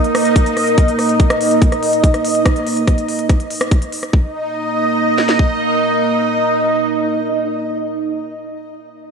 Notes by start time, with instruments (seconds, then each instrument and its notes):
Already playing: ambient pad A#3 A#4 D#5 D#6, synth texture D#4 D#5
0.04 closed hi-hat
0.15 cross-stick, open hi-hat
0.25 closed hi-hat
0.36 kick, closed hi-hat
0.46 closed hi-hat
0.57 cross-stick, open hi-hat
0.67 closed hi-hat
0.78 kick, closed hi-hat
0.88 closed hi-hat
0.99 cross-stick, open hi-hat
1.09 closed hi-hat
1.20 kick, closed hi-hat
1.30 cross-stick, closed hi-hat
1.41 open hi-hat
1.51 closed hi-hat
1.62 kick, closed hi-hat
1.72 cross-stick, closed hi-hat
1.83 open hi-hat
1.93 closed hi-hat
2.04 kick, closed hi-hat
2.14 cross-stick, closed hi-hat
2.25 open hi-hat
2.35 closed hi-hat
2.46 kick, cross-stick, closed hi-hat
2.56 closed hi-hat
2.67 open hi-hat
2.77 closed hi-hat
2.87 kick, cross-stick, closed hi-hat
2.98 closed hi-hat
3.08 open hi-hat
3.19 closed hi-hat
3.29 kick, cross-stick, closed hi-hat
3.40 closed hi-hat
3.50 open hi-hat
3.61 cross-stick, closed hi-hat
3.71 kick, closed hi-hat
3.82 closed hi-hat
3.92 open hi-hat
4.03 cross-stick, closed hi-hat
4.13 ambient pad A#3, synth texture D#4 D#5, kick
4.20 ambient pad A#4
4.26 ambient pad D#5
4.32 ambient pad D#6
5.18 snare
5.29 snare
5.39 kick